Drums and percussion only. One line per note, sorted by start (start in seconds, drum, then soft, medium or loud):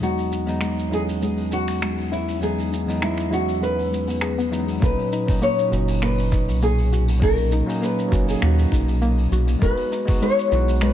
0.03 shaker medium
0.18 open hi-hat soft
0.18 shaker soft
0.32 shaker medium
0.47 open hi-hat medium
0.47 shaker soft
0.61 finger snap medium
0.61 shaker medium
0.79 shaker soft
0.93 shaker medium
1.09 open hi-hat medium
1.09 shaker soft
1.22 shaker medium
1.37 open hi-hat medium
1.52 shaker medium
1.68 finger snap soft
1.68 open hi-hat medium
1.68 shaker soft
1.82 finger snap medium
1.82 shaker medium
1.98 open hi-hat soft
2.13 shaker medium
2.28 open hi-hat medium
2.28 shaker soft
2.42 shaker medium
2.58 open hi-hat soft
2.58 shaker soft
2.73 shaker medium
2.88 open hi-hat medium
2.88 shaker soft
3.02 finger snap medium
3.02 shaker medium
3.18 finger snap soft
3.18 shaker soft
3.33 shaker medium
3.48 open hi-hat medium
3.48 shaker medium
3.63 shaker medium
3.78 open hi-hat medium
3.93 shaker medium
4.07 open hi-hat medium
4.07 shaker soft
4.21 finger snap medium
4.21 shaker soft
4.38 open hi-hat soft
4.38 shaker soft
4.53 shaker medium
4.68 open hi-hat medium
4.68 shaker soft
4.82 kick loud
4.82 shaker medium
4.98 open hi-hat soft
5.12 shaker medium
5.28 kick loud
5.28 open hi-hat medium
5.28 shaker medium
5.42 shaker medium
5.59 shaker soft
5.73 shaker medium
5.88 open hi-hat medium
5.88 shaker soft
6.02 finger snap medium
6.02 shaker medium
6.18 open hi-hat medium
6.18 shaker soft
6.32 kick loud
6.32 shaker medium
6.48 open hi-hat medium
6.48 shaker soft
6.62 shaker medium
6.78 open hi-hat medium
6.93 shaker medium
7.08 open hi-hat medium
7.08 shaker medium
7.22 kick loud
7.22 shaker medium
7.38 open hi-hat soft
7.52 shaker medium
7.69 open hi-hat medium
7.69 shaker medium
7.83 shaker medium
7.99 shaker medium
8.12 kick loud
8.12 shaker medium
8.28 open hi-hat medium
8.28 shaker soft
8.42 finger snap medium
8.42 shaker medium
8.58 open hi-hat medium
8.58 shaker soft
8.72 kick medium
8.72 shaker medium
8.88 open hi-hat medium
8.88 shaker soft
9.02 shaker medium
9.18 open hi-hat medium
9.32 shaker medium
9.47 open hi-hat medium
9.47 shaker soft
9.62 kick loud
9.62 shaker medium
9.77 open hi-hat soft
9.93 shaker medium
10.07 kick loud
10.07 open hi-hat medium
10.07 shaker medium
10.22 shaker medium
10.39 shaker medium
10.52 shaker medium
10.68 open hi-hat medium
10.68 shaker medium
10.81 finger snap medium
10.81 shaker medium